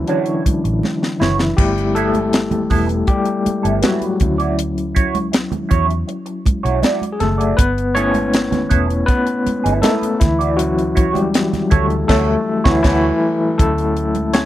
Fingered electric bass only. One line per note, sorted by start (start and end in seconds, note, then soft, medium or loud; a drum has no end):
0.46 muted fingered electric bass stroke soft
0.65 0.80 A1 medium
1.21 1.52 F#1 medium
1.58 2.67 G1 medium
2.71 3.02 E1 medium
3.46 muted fingered electric bass stroke soft
3.65 3.80 G1 medium
4.21 5.46 D2 medium
5.71 6.02 E2 medium
6.47 muted fingered electric bass stroke soft
6.65 6.80 B1 medium
7.21 7.52 F#1 medium
7.59 8.67 G1 medium
8.71 9.02 E1 medium
9.47 muted fingered electric bass stroke soft
9.66 9.81 G1 medium
10.22 11.47 D2 medium
11.72 12.03 D2 loud
12.09 12.35 D2 medium
12.66 12.82 D2 medium
12.85 13.10 D2 loud
13.60 14.45 D2 medium